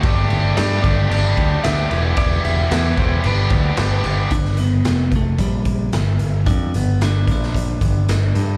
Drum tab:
CC |x-x-x-x-x-x-x-x-|x-x-x-x-x-x-x-x-|----------------|----------------|
HH |----------------|----------------|x-x-x-x-x-x-x-x-|x-x-x-x-x-x-x-x-|
SD |----o-------o---|----o-------o---|-o--o-------o---|----o--o----o---|
BD |o-----o---o-----|o-----o---o-----|o-----o-o-o-----|o-----o-o-o-----|